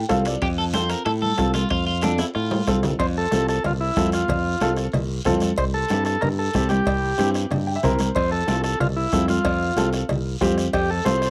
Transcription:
0.09 C2 C4 F4 A4 F5, bombo low, bombo rim, high conga, high timbale, low timbale, short guiro
0.25 D5, bombo rim, high timbale, short guiro
0.42 F2 G4, bombo low, bombo rim, high timbale, long guiro
0.58 A4, high conga
0.74 C4 F4 A4 C5, bombo rim, high conga, high timbale, short guiro
0.90 A#4, bombo rim, high timbale, short guiro
1.05 A2 A4, bombo rim, high conga, high timbale, long guiro
1.22 A4, high conga
1.38 C2 C4 F4 A4, bombo low, bombo rim, high conga, high timbale, short guiro
1.54 F4, bombo rim, high conga, high timbale, short guiro
1.69 F2 F4, bombo low, bombo rim, high timbale, long guiro
1.87 F4, high conga
2.02 C4 D4 F4 A4, bombo rim, high conga, high timbale, short guiro
2.18 E4, bombo rim, high timbale, short guiro
2.34 A2 F4, bombo rim, high conga, long guiro
2.51 high conga, low timbale
2.67 C2 C4 F4 A4, bombo low, bombo rim, high conga, low timbale, short guiro
2.83 bombo rim, low conga, low timbale, short guiro
2.99 F2 C5, bombo low, bombo rim, cowbell, long guiro
3.16 A4, high conga
3.31 C2 C4 F4 A4, bombo rim, high conga, short guiro
3.48 A4, bombo rim, short guiro
3.64 C2 F4, bombo rim, cowbell, high conga, low conga, long guiro
3.81 E4
3.96 F2 C4 F4 A4, bombo low, bombo rim, high conga, low timbale, short guiro
4.12 F4, bombo rim, short guiro
4.28 F2, bombo low, bombo rim, cowbell, low conga, long guiro
4.45 high conga
4.60 C2 C4 F4 A4, bombo rim, high conga, short guiro
4.77 bombo rim, short guiro
4.92 C2, bombo rim, cowbell, high conga, low conga, long guiro
5.25 F2 C4 F4 A4, bombo low, bombo rim, high conga, low conga, low timbale, short guiro
5.40 bombo rim, high conga, short guiro
5.56 C2 C5, bombo low, bombo rim, cowbell, long guiro
5.74 A4, high conga
5.88 G2 C4 E4 G4, bombo rim, high conga, short guiro
6.05 A4, bombo rim, short guiro
6.21 G2 A#4, bombo rim, cowbell, high conga, low conga, long guiro
6.39 A4
6.53 C2 C4 E4 G4, bombo low, bombo rim, high conga, short guiro
6.69 G4, bombo rim, high conga, short guiro
6.86 C2, bombo low, bombo rim, cowbell, long guiro
7.03 high conga
7.18 G2 C4 E4 G4, bombo rim, high conga, short guiro
7.34 bombo rim, short guiro
7.51 G2, bombo rim, cowbell, high conga, low conga, long guiro
7.67 G5
7.76 E5
7.83 C2 C4 E4 A#4 C5, bombo low, bombo rim, high conga, low conga, low timbale, short guiro
7.99 bombo rim, high conga, short guiro
8.15 F2 C5, bombo low, bombo rim, cowbell, long guiro
8.31 A4, high conga
8.47 C2 C4 F4 A4, bombo rim, high conga, short guiro
8.64 A4, bombo rim, short guiro
8.80 C2 F4, bombo rim, cowbell, high conga, low conga, long guiro
8.96 E4
9.12 F2 C4 F4 A4, bombo low, bombo rim, high conga, short guiro
9.28 F4, bombo rim, high conga, short guiro
9.45 F2, bombo low, bombo rim, cowbell, long guiro
9.62 high conga
9.76 C2 C4 F4 A4, bombo rim, high conga, short guiro
9.93 bombo rim, short guiro
10.09 C2, bombo rim, cowbell, high conga, low conga, long guiro
10.41 F2 C4 F4 G4, bombo low, bombo rim, high conga, low timbale, short guiro
10.58 bombo rim, short guiro
10.73 F2 G4, bombo low, bombo rim, cowbell, long guiro
10.90 A4, high conga
11.04 C2 C4 F4 A4 C5, bombo rim, high conga, short guiro
11.22 bombo rim, short guiro

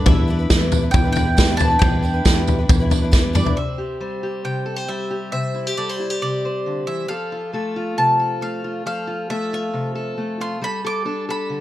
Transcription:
0.06 E2 E3 G3 D4 E4 B4 E5, kick, floor tom, tambourine
0.28 G3 D4 E4 B4
0.39 D4 E4 B4
0.50 E2 E3 G3 D4 E4 B4, kick, snare, tambourine
0.72 floor tom, tambourine
0.82 D4 E4 B4
0.91 E2 G5, kick, floor tom, tambourine
1.04 D4 E4 B4
1.12 G3 D4 G5, floor tom, tambourine
1.17 E4 B4
1.25 D4 E4 B4
1.37 E3 G3 D4 E4 B4, kick, snare, tambourine
1.57 G3 D4 E4 A5, floor tom, tambourine
1.61 B4
1.70 D4 E4 B4
1.79 E2 E3 G3 D4 E4 B4 G5, kick, floor tom, tambourine
2.02 G3 D4 E4 B4, tambourine
2.14 D4 E4 B4
2.25 E2 E3 G3 D4 E4 B4, kick, snare, tambourine
2.47 floor tom, tambourine
2.58 D4 E4 B4
2.69 E2, kick, floor tom, tambourine
2.80 D4 E4 B4
2.90 G3 D4 E4 B4, floor tom, tambourine
3.02 D4 E4 B4
3.11 E3 G3 D4 E4 B4, kick, snare, tambourine
3.33 G3 D4 E4 B4 D5, mid tom, tambourine
3.44 D4 E4 B4, floor tom
3.56 C3 C5 E5
3.78 G4
4.00 G3 C5
4.23 G4
4.44 C3 G5
4.66 A4
4.76 C5
4.88 G3 E5
5.11 G4
5.32 C3 C5 E5
5.54 E4
5.67 G4
5.77 G3 A4 D5
5.89 C5
5.99 E4
6.10 G4
6.22 C3 D5
6.45 C5
6.66 D3
6.87 E3 E5
7.08 F3 A4 F5
7.32 F4
7.53 A3 A4
7.76 F4
7.98 C3 A5
8.19 A4
8.41 A3 F5
8.64 F4
8.86 F3 A4 F5
9.07 F4
9.30 A3 A4 E5
9.53 F4 E5
9.73 C3
9.95 A4
10.18 A3
10.40 F4 C6
10.62 G3 A4 B5
10.84 A4 D6
11.05 D4 A4
11.29 A4 B5
11.50 D3

